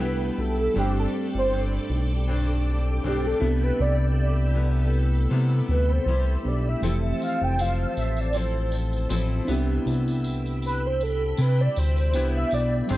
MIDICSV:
0, 0, Header, 1, 7, 480
1, 0, Start_track
1, 0, Tempo, 758342
1, 486, Time_signature, 4, 2, 24, 8
1, 8213, End_track
2, 0, Start_track
2, 0, Title_t, "String machine"
2, 0, Program_c, 0, 50
2, 0, Note_on_c, 0, 69, 80
2, 0, Note_on_c, 0, 79, 79
2, 0, Note_on_c, 0, 83, 77
2, 0, Note_on_c, 0, 88, 84
2, 460, Note_off_c, 0, 88, 0
2, 461, Note_off_c, 0, 83, 0
2, 479, Note_on_c, 0, 74, 82
2, 481, Note_on_c, 0, 86, 86
2, 2145, Note_off_c, 0, 74, 0
2, 2147, Note_off_c, 0, 86, 0
2, 2164, Note_on_c, 0, 88, 89
2, 2165, Note_on_c, 0, 83, 77
2, 4298, Note_off_c, 0, 79, 0
2, 4303, Note_off_c, 0, 88, 0
2, 4304, Note_off_c, 0, 83, 0
2, 4332, Note_on_c, 0, 72, 78
2, 4332, Note_on_c, 0, 81, 69
2, 4335, Note_on_c, 0, 88, 98
2, 5992, Note_off_c, 0, 72, 0
2, 5992, Note_off_c, 0, 81, 0
2, 6002, Note_on_c, 0, 79, 79
2, 6003, Note_on_c, 0, 83, 81
2, 8136, Note_off_c, 0, 69, 0
2, 8142, Note_off_c, 0, 83, 0
2, 8144, Note_off_c, 0, 88, 0
2, 8155, Note_on_c, 0, 74, 77
2, 8156, Note_on_c, 0, 72, 83
2, 8157, Note_on_c, 0, 86, 100
2, 8213, Note_off_c, 0, 72, 0
2, 8213, Note_off_c, 0, 74, 0
2, 8213, Note_off_c, 0, 79, 0
2, 8213, Note_off_c, 0, 86, 0
2, 8213, End_track
3, 0, Start_track
3, 0, Title_t, "Soft synth lead"
3, 0, Program_c, 1, 80
3, 0, Note_on_c, 1, 71, 91
3, 250, Note_on_c, 1, 69, 95
3, 260, Note_off_c, 1, 71, 0
3, 488, Note_off_c, 1, 69, 0
3, 494, Note_on_c, 1, 67, 104
3, 613, Note_off_c, 1, 67, 0
3, 627, Note_on_c, 1, 69, 99
3, 715, Note_off_c, 1, 69, 0
3, 873, Note_on_c, 1, 72, 92
3, 1089, Note_off_c, 1, 72, 0
3, 1945, Note_on_c, 1, 67, 90
3, 2066, Note_on_c, 1, 69, 83
3, 2075, Note_off_c, 1, 67, 0
3, 2300, Note_off_c, 1, 69, 0
3, 2304, Note_on_c, 1, 71, 88
3, 2412, Note_on_c, 1, 74, 109
3, 2421, Note_off_c, 1, 71, 0
3, 3129, Note_off_c, 1, 74, 0
3, 3613, Note_on_c, 1, 71, 85
3, 3744, Note_on_c, 1, 72, 100
3, 3754, Note_off_c, 1, 71, 0
3, 4100, Note_on_c, 1, 74, 92
3, 4109, Note_off_c, 1, 72, 0
3, 4232, Note_on_c, 1, 76, 96
3, 4242, Note_off_c, 1, 74, 0
3, 4573, Note_off_c, 1, 76, 0
3, 4578, Note_on_c, 1, 77, 91
3, 4706, Note_on_c, 1, 79, 94
3, 4716, Note_off_c, 1, 77, 0
3, 4813, Note_on_c, 1, 77, 108
3, 4823, Note_off_c, 1, 79, 0
3, 5049, Note_off_c, 1, 77, 0
3, 5054, Note_on_c, 1, 76, 86
3, 5194, Note_on_c, 1, 74, 87
3, 5203, Note_off_c, 1, 76, 0
3, 5295, Note_on_c, 1, 72, 78
3, 5305, Note_off_c, 1, 74, 0
3, 5530, Note_off_c, 1, 72, 0
3, 6746, Note_on_c, 1, 71, 101
3, 6875, Note_on_c, 1, 72, 86
3, 6884, Note_off_c, 1, 71, 0
3, 6981, Note_on_c, 1, 69, 89
3, 6990, Note_off_c, 1, 72, 0
3, 7213, Note_off_c, 1, 69, 0
3, 7224, Note_on_c, 1, 71, 93
3, 7348, Note_on_c, 1, 74, 88
3, 7357, Note_off_c, 1, 71, 0
3, 7458, Note_on_c, 1, 72, 98
3, 7468, Note_off_c, 1, 74, 0
3, 7823, Note_off_c, 1, 72, 0
3, 7831, Note_on_c, 1, 76, 99
3, 7936, Note_on_c, 1, 74, 102
3, 7946, Note_off_c, 1, 76, 0
3, 8170, Note_off_c, 1, 74, 0
3, 8177, Note_on_c, 1, 72, 94
3, 8213, Note_off_c, 1, 72, 0
3, 8213, End_track
4, 0, Start_track
4, 0, Title_t, "Reed electric piano"
4, 0, Program_c, 2, 4
4, 0, Control_c, 2, 64, 127
4, 0, Note_on_c, 2, 55, 44
4, 0, Note_on_c, 2, 59, 35
4, 6, Note_on_c, 2, 62, 39
4, 7, Note_on_c, 2, 67, 50
4, 460, Note_off_c, 2, 55, 0
4, 468, Note_on_c, 2, 55, 63
4, 476, Note_on_c, 2, 60, 51
4, 482, Note_off_c, 2, 59, 0
4, 482, Note_off_c, 2, 62, 0
4, 487, Note_off_c, 2, 67, 0
4, 490, Note_on_c, 2, 62, 57
4, 495, Control_c, 2, 64, 0
4, 498, Note_on_c, 2, 67, 70
4, 593, Control_c, 2, 64, 127
4, 2131, Note_off_c, 2, 55, 0
4, 2136, Note_off_c, 2, 60, 0
4, 2143, Note_off_c, 2, 62, 0
4, 2147, Note_off_c, 2, 67, 0
4, 2150, Note_on_c, 2, 60, 62
4, 2161, Note_on_c, 2, 62, 58
4, 2173, Note_on_c, 2, 64, 52
4, 2174, Control_c, 2, 64, 0
4, 2184, Note_on_c, 2, 67, 64
4, 2284, Control_c, 2, 64, 127
4, 4053, Note_off_c, 2, 60, 0
4, 4058, Note_off_c, 2, 62, 0
4, 4064, Note_off_c, 2, 64, 0
4, 4069, Note_off_c, 2, 67, 0
4, 4072, Note_on_c, 2, 59, 48
4, 4080, Note_on_c, 2, 62, 38
4, 4085, Note_on_c, 2, 64, 44
4, 4087, Note_on_c, 2, 67, 47
4, 4308, Note_on_c, 2, 57, 58
4, 4318, Note_on_c, 2, 60, 53
4, 4319, Note_off_c, 2, 59, 0
4, 4323, Note_off_c, 2, 62, 0
4, 4325, Note_off_c, 2, 64, 0
4, 4326, Note_off_c, 2, 67, 0
4, 4329, Note_on_c, 2, 52, 54
4, 4333, Control_c, 2, 64, 0
4, 4338, Note_on_c, 2, 67, 63
4, 4431, Control_c, 2, 64, 127
4, 5971, Note_off_c, 2, 57, 0
4, 5973, Note_off_c, 2, 60, 0
4, 5981, Note_off_c, 2, 52, 0
4, 5981, Note_on_c, 2, 60, 80
4, 5986, Note_off_c, 2, 67, 0
4, 5994, Note_on_c, 2, 62, 67
4, 6005, Note_on_c, 2, 64, 70
4, 6013, Control_c, 2, 64, 0
4, 6016, Note_on_c, 2, 67, 82
4, 6134, Control_c, 2, 64, 127
4, 7647, Note_off_c, 2, 60, 0
4, 7654, Note_off_c, 2, 62, 0
4, 7659, Note_off_c, 2, 64, 0
4, 7665, Note_off_c, 2, 67, 0
4, 7673, Note_on_c, 2, 59, 47
4, 7681, Note_on_c, 2, 62, 43
4, 7685, Note_on_c, 2, 64, 38
4, 7687, Note_on_c, 2, 67, 50
4, 8145, Note_on_c, 2, 55, 58
4, 8152, Note_on_c, 2, 60, 62
4, 8159, Note_off_c, 2, 59, 0
4, 8159, Note_off_c, 2, 62, 0
4, 8165, Note_off_c, 2, 64, 0
4, 8166, Note_off_c, 2, 67, 0
4, 8167, Note_on_c, 2, 62, 58
4, 8174, Control_c, 2, 64, 0
4, 8176, Note_on_c, 2, 67, 70
4, 8213, Note_off_c, 2, 55, 0
4, 8213, Note_off_c, 2, 60, 0
4, 8213, Note_off_c, 2, 62, 0
4, 8213, Note_off_c, 2, 67, 0
4, 8213, End_track
5, 0, Start_track
5, 0, Title_t, "Steel-string acoustic guitar"
5, 0, Program_c, 3, 25
5, 0, Note_on_c, 3, 55, 69
5, 3, Note_on_c, 3, 59, 68
5, 7, Note_on_c, 3, 64, 73
5, 474, Note_on_c, 3, 43, 67
5, 476, Note_off_c, 3, 55, 0
5, 478, Note_on_c, 3, 55, 78
5, 480, Note_off_c, 3, 59, 0
5, 482, Note_on_c, 3, 60, 83
5, 483, Note_off_c, 3, 64, 0
5, 486, Note_on_c, 3, 62, 83
5, 952, Note_off_c, 3, 43, 0
5, 960, Note_on_c, 3, 43, 52
5, 962, Note_off_c, 3, 55, 0
5, 965, Note_on_c, 3, 55, 56
5, 966, Note_off_c, 3, 62, 0
5, 970, Note_off_c, 3, 60, 0
5, 972, Note_on_c, 3, 60, 58
5, 973, Note_on_c, 3, 62, 55
5, 1430, Note_off_c, 3, 43, 0
5, 1438, Note_on_c, 3, 43, 63
5, 1439, Note_off_c, 3, 55, 0
5, 1441, Note_on_c, 3, 55, 73
5, 1443, Note_off_c, 3, 62, 0
5, 1444, Note_off_c, 3, 60, 0
5, 1446, Note_on_c, 3, 60, 66
5, 1450, Note_on_c, 3, 62, 83
5, 1911, Note_off_c, 3, 43, 0
5, 1919, Note_on_c, 3, 43, 65
5, 1921, Note_off_c, 3, 55, 0
5, 1923, Note_on_c, 3, 55, 77
5, 1925, Note_off_c, 3, 60, 0
5, 1926, Note_off_c, 3, 62, 0
5, 1927, Note_on_c, 3, 60, 68
5, 1933, Note_on_c, 3, 62, 78
5, 2151, Note_off_c, 3, 62, 0
5, 2153, Note_on_c, 3, 64, 70
5, 2155, Note_off_c, 3, 55, 0
5, 2155, Note_off_c, 3, 60, 0
5, 2157, Note_on_c, 3, 59, 58
5, 2162, Note_off_c, 3, 43, 0
5, 2162, Note_on_c, 3, 55, 58
5, 2163, Note_on_c, 3, 48, 47
5, 2868, Note_off_c, 3, 48, 0
5, 2874, Note_off_c, 3, 55, 0
5, 2876, Note_on_c, 3, 48, 52
5, 2882, Note_off_c, 3, 59, 0
5, 2882, Note_on_c, 3, 55, 56
5, 2887, Note_off_c, 3, 64, 0
5, 2888, Note_on_c, 3, 59, 59
5, 2889, Note_on_c, 3, 64, 61
5, 3346, Note_off_c, 3, 48, 0
5, 3351, Note_off_c, 3, 55, 0
5, 3354, Note_on_c, 3, 48, 60
5, 3355, Note_off_c, 3, 59, 0
5, 3358, Note_on_c, 3, 55, 69
5, 3362, Note_on_c, 3, 59, 63
5, 3367, Note_off_c, 3, 64, 0
5, 3369, Note_on_c, 3, 64, 67
5, 3839, Note_off_c, 3, 55, 0
5, 3840, Note_off_c, 3, 48, 0
5, 3844, Note_off_c, 3, 59, 0
5, 3847, Note_on_c, 3, 55, 70
5, 3851, Note_off_c, 3, 64, 0
5, 3854, Note_on_c, 3, 64, 66
5, 4318, Note_off_c, 3, 55, 0
5, 4320, Note_on_c, 3, 53, 79
5, 4322, Note_on_c, 3, 60, 79
5, 4323, Note_off_c, 3, 64, 0
5, 4326, Note_on_c, 3, 64, 75
5, 4329, Note_on_c, 3, 69, 90
5, 4795, Note_off_c, 3, 53, 0
5, 4803, Note_on_c, 3, 53, 53
5, 4805, Note_off_c, 3, 60, 0
5, 4807, Note_off_c, 3, 69, 0
5, 4807, Note_on_c, 3, 60, 57
5, 4813, Note_on_c, 3, 69, 59
5, 4822, Note_off_c, 3, 64, 0
5, 5270, Note_off_c, 3, 53, 0
5, 5277, Note_on_c, 3, 53, 60
5, 5282, Note_off_c, 3, 60, 0
5, 5284, Note_off_c, 3, 69, 0
5, 5284, Note_on_c, 3, 60, 60
5, 5290, Note_on_c, 3, 64, 64
5, 5292, Note_on_c, 3, 69, 66
5, 5747, Note_off_c, 3, 53, 0
5, 5754, Note_on_c, 3, 53, 73
5, 5758, Note_off_c, 3, 60, 0
5, 5761, Note_on_c, 3, 60, 74
5, 5762, Note_off_c, 3, 69, 0
5, 5764, Note_off_c, 3, 64, 0
5, 5766, Note_on_c, 3, 64, 78
5, 5769, Note_on_c, 3, 69, 85
5, 5987, Note_off_c, 3, 64, 0
5, 5994, Note_on_c, 3, 64, 72
5, 6000, Note_off_c, 3, 53, 0
5, 6001, Note_off_c, 3, 60, 0
5, 6003, Note_on_c, 3, 59, 68
5, 6007, Note_off_c, 3, 69, 0
5, 6012, Note_on_c, 3, 55, 64
5, 6016, Note_on_c, 3, 48, 58
5, 7193, Note_off_c, 3, 48, 0
5, 7199, Note_off_c, 3, 64, 0
5, 7201, Note_on_c, 3, 48, 64
5, 7203, Note_off_c, 3, 55, 0
5, 7204, Note_off_c, 3, 59, 0
5, 7205, Note_on_c, 3, 55, 69
5, 7215, Note_on_c, 3, 64, 64
5, 7681, Note_off_c, 3, 55, 0
5, 7683, Note_off_c, 3, 48, 0
5, 7684, Note_on_c, 3, 55, 74
5, 7685, Note_off_c, 3, 64, 0
5, 7690, Note_on_c, 3, 59, 73
5, 7693, Note_on_c, 3, 64, 83
5, 8156, Note_off_c, 3, 55, 0
5, 8157, Note_on_c, 3, 43, 83
5, 8159, Note_on_c, 3, 55, 84
5, 8161, Note_off_c, 3, 59, 0
5, 8163, Note_off_c, 3, 64, 0
5, 8163, Note_on_c, 3, 60, 89
5, 8165, Note_on_c, 3, 62, 92
5, 8213, Note_off_c, 3, 43, 0
5, 8213, Note_off_c, 3, 55, 0
5, 8213, Note_off_c, 3, 60, 0
5, 8213, Note_off_c, 3, 62, 0
5, 8213, End_track
6, 0, Start_track
6, 0, Title_t, "Analog synth bass"
6, 0, Program_c, 4, 38
6, 1, Note_on_c, 4, 36, 93
6, 195, Note_off_c, 4, 36, 0
6, 242, Note_on_c, 4, 35, 87
6, 436, Note_off_c, 4, 35, 0
6, 482, Note_on_c, 4, 31, 109
6, 676, Note_off_c, 4, 31, 0
6, 852, Note_on_c, 4, 31, 97
6, 1133, Note_off_c, 4, 31, 0
6, 1201, Note_on_c, 4, 35, 99
6, 1898, Note_off_c, 4, 35, 0
6, 1921, Note_on_c, 4, 35, 96
6, 2115, Note_off_c, 4, 35, 0
6, 2161, Note_on_c, 4, 36, 95
6, 2355, Note_off_c, 4, 36, 0
6, 2402, Note_on_c, 4, 36, 118
6, 3338, Note_off_c, 4, 36, 0
6, 3362, Note_on_c, 4, 48, 101
6, 3555, Note_off_c, 4, 48, 0
6, 3601, Note_on_c, 4, 38, 93
6, 3795, Note_off_c, 4, 38, 0
6, 3837, Note_on_c, 4, 36, 101
6, 4032, Note_off_c, 4, 36, 0
6, 4083, Note_on_c, 4, 35, 85
6, 4276, Note_off_c, 4, 35, 0
6, 4319, Note_on_c, 4, 29, 103
6, 4514, Note_off_c, 4, 29, 0
6, 4694, Note_on_c, 4, 29, 98
6, 4974, Note_off_c, 4, 29, 0
6, 5047, Note_on_c, 4, 33, 79
6, 5741, Note_off_c, 4, 33, 0
6, 5764, Note_on_c, 4, 33, 103
6, 5956, Note_off_c, 4, 33, 0
6, 6003, Note_on_c, 4, 36, 96
6, 6196, Note_off_c, 4, 36, 0
6, 6241, Note_on_c, 4, 36, 99
6, 7177, Note_off_c, 4, 36, 0
6, 7206, Note_on_c, 4, 48, 94
6, 7397, Note_off_c, 4, 48, 0
6, 7451, Note_on_c, 4, 38, 100
6, 7689, Note_on_c, 4, 36, 85
6, 7698, Note_off_c, 4, 38, 0
6, 7879, Note_off_c, 4, 36, 0
6, 7928, Note_on_c, 4, 35, 84
6, 8119, Note_off_c, 4, 35, 0
6, 8167, Note_on_c, 4, 31, 114
6, 8213, Note_off_c, 4, 31, 0
6, 8213, End_track
7, 0, Start_track
7, 0, Title_t, "Drums"
7, 4323, Note_on_c, 9, 54, 47
7, 4386, Note_off_c, 9, 54, 0
7, 4567, Note_on_c, 9, 54, 46
7, 4631, Note_off_c, 9, 54, 0
7, 4804, Note_on_c, 9, 54, 66
7, 4868, Note_off_c, 9, 54, 0
7, 5043, Note_on_c, 9, 54, 42
7, 5107, Note_off_c, 9, 54, 0
7, 5168, Note_on_c, 9, 54, 25
7, 5231, Note_off_c, 9, 54, 0
7, 5272, Note_on_c, 9, 54, 55
7, 5336, Note_off_c, 9, 54, 0
7, 5517, Note_on_c, 9, 54, 39
7, 5580, Note_off_c, 9, 54, 0
7, 5651, Note_on_c, 9, 54, 28
7, 5715, Note_off_c, 9, 54, 0
7, 5760, Note_on_c, 9, 54, 72
7, 5823, Note_off_c, 9, 54, 0
7, 6000, Note_on_c, 9, 54, 47
7, 6064, Note_off_c, 9, 54, 0
7, 6246, Note_on_c, 9, 54, 49
7, 6309, Note_off_c, 9, 54, 0
7, 6378, Note_on_c, 9, 54, 28
7, 6442, Note_off_c, 9, 54, 0
7, 6482, Note_on_c, 9, 54, 51
7, 6546, Note_off_c, 9, 54, 0
7, 6619, Note_on_c, 9, 54, 27
7, 6682, Note_off_c, 9, 54, 0
7, 6723, Note_on_c, 9, 54, 59
7, 6786, Note_off_c, 9, 54, 0
7, 6966, Note_on_c, 9, 54, 42
7, 7029, Note_off_c, 9, 54, 0
7, 7199, Note_on_c, 9, 54, 62
7, 7263, Note_off_c, 9, 54, 0
7, 7446, Note_on_c, 9, 54, 39
7, 7510, Note_off_c, 9, 54, 0
7, 7576, Note_on_c, 9, 54, 28
7, 7639, Note_off_c, 9, 54, 0
7, 7681, Note_on_c, 9, 54, 77
7, 7744, Note_off_c, 9, 54, 0
7, 7917, Note_on_c, 9, 54, 51
7, 7980, Note_off_c, 9, 54, 0
7, 8159, Note_on_c, 9, 54, 50
7, 8213, Note_off_c, 9, 54, 0
7, 8213, End_track
0, 0, End_of_file